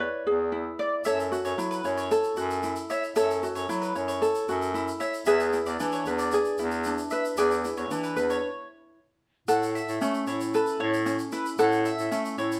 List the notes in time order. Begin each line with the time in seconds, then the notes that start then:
Already playing: E4 G#4 C#5 D5
0.00 B4
0.27 E2 G#4
0.52 E4
0.79 D5
1.05 F#2 A4 C#5 E5, shaker
1.20 shaker
1.32 F#4, shaker
1.45 F#2 C#5, shaker
1.57 F#3 E4, shaker
1.71 B4, shaker
1.84 F#2 C#5, shaker
1.97 C#5, shaker
2.11 A4, shaker
2.23 shaker
2.36 F#2 F#4, shaker
2.51 shaker
2.63 E4, shaker
2.76 shaker
2.90 C#5 E5, shaker
3.04 shaker
3.16 F#2 A4 C#5 E5, shaker
3.31 shaker
3.43 F#4, shaker
3.55 F#2 C#5, shaker
3.69 F#3 E4, shaker
3.82 B4, shaker
3.95 F#2 C#5, shaker
4.08 C#5, shaker
4.22 A4, shaker
4.35 shaker
4.48 F#2 F#4, shaker
4.62 shaker
4.74 E4, shaker
4.88 shaker
5.00 C#5 E5, shaker
5.14 shaker
5.26 E2 G#4 B4 E5, shaker
5.40 shaker
5.53 E4, shaker
5.66 E2 D5, shaker
5.80 E3 D4, shaker
5.92 C#5, shaker
6.05 E2 B4, shaker
6.19 D5, shaker
6.32 G#4, shaker
6.45 shaker
6.58 E2 E4, shaker
6.71 shaker
6.84 D4, shaker
6.98 shaker
7.10 B4 E5, shaker
7.25 shaker
7.37 E2 G#4 B4 D5, shaker
7.51 shaker
7.64 E4, shaker
7.77 E2 C#5, shaker
7.91 E3 D4, shaker
8.04 B4, shaker
8.16 E2 B4, shaker
8.30 C#5, shaker
9.48 A2 A4 F#5, shaker
9.63 shaker
9.75 E5, shaker
9.88 A2, shaker
10.01 A3 C#4, shaker
10.14 shaker
10.27 A2 E4 C#5, shaker
10.40 shaker
10.54 A4 B4, shaker
10.67 shaker
10.80 A2 C#5
10.94 shaker
11.06 C#4, shaker
11.19 shaker
11.32 E4 B4, shaker
11.46 shaker
11.58 A2 A4 F#5, shaker
11.72 shaker
11.85 E5, shaker
11.99 A2, shaker
12.11 A3 C#4, shaker
12.25 shaker
12.38 A2 E4 C#5, shaker
12.52 shaker